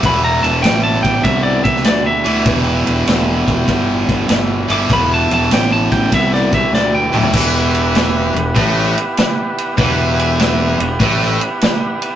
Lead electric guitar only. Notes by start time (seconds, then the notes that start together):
0.06 B5
0.24 A#5
0.43 A5
0.63 G5
0.83 A5
1.03 G5
1.24 E5
1.43 D5
1.64 E5
1.85 D5
2.06 E5
4.72 D6
4.93 B5
5.14 A5
5.34 A5
5.54 G5
5.72 A5
5.92 G5
6.14 E5
6.34 D5
6.54 E5
6.75 D5
6.95 G5